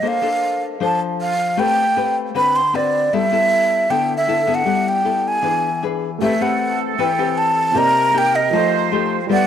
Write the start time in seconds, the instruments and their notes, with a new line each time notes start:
0.02 nylon-string guitar A#3 D4 A4 C5
0.08 flute F5
0.22 nylon-string guitar D4 A4 C5
0.80 nylon-string guitar F3 D4 A4 C5, flute A5
1.21 flute F5
1.57 nylon-string guitar A3 C4 G4 B4, flute G5
1.96 nylon-string guitar C4 G4 B4
2.34 nylon-string guitar D3 C4 F#4 B4, flute B5
2.56 flute C6
2.73 nylon-string guitar C4 F#4 B4, flute D5
3.13 nylon-string guitar G3 B3 E4 A4, flute E5
3.31 nylon-string guitar B3 E4 A4
3.90 nylon-string guitar D3 B3 E4 A4, flute G5
4.17 flute E5
4.28 nylon-string guitar B3 E4 A4
4.47 nylon-string guitar B3 E4 A4
4.55 flute F#5
4.65 nylon-string guitar G3 B3 E4 A4
4.88 flute G5
5.05 nylon-string guitar B3 E4 A4
5.28 flute G#5
5.42 nylon-string guitar E3 D4 G#4 B4
5.83 nylon-string guitar D4 G#4 B4
6.18 grand piano A3 G4 B4, nylon-string guitar A3 C4 G4 B4, flute section A4, flute E5
6.25 grand piano E5
6.41 nylon-string guitar C4 G4 B4, flute F#5
6.98 nylon-string guitar E3 C4 G4 B4, flute G5
7.18 nylon-string guitar C4 G4 B4
7.38 flute A5
7.72 nylon-string guitar C3 A#3 D#4 G4, grand piano C4 G4 A#4, flute section A#4
7.77 grand piano D5 D#5, flute A#5
8.13 nylon-string guitar A#3 D#4 G4
8.18 flute G5
8.35 flute D#5
8.50 grand piano F3 G4 A4 C5, nylon-string guitar F3 A3 D#4, flute section C5
8.54 nylon-string guitar G4, grand piano D#5
8.92 nylon-string guitar A3 D#4 G4
9.27 grand piano G3 A4 B4, nylon-string guitar G3 B3 E4 A4, flute section D5
9.32 grand piano D5 E5, flute F#5